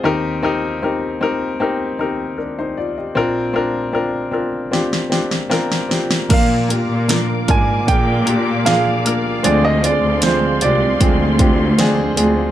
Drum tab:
CC |----------------|----------------|x---------------|----------------|
HH |----------------|----------------|x-x-x-x-x-x-x-x-|x-x-x-x-x-x-x-x-|
SD |----------------|--------oooooooo|----o-------o---|----o-------o---|
BD |----------------|----------------|o-----o-o-------|--------o-o-----|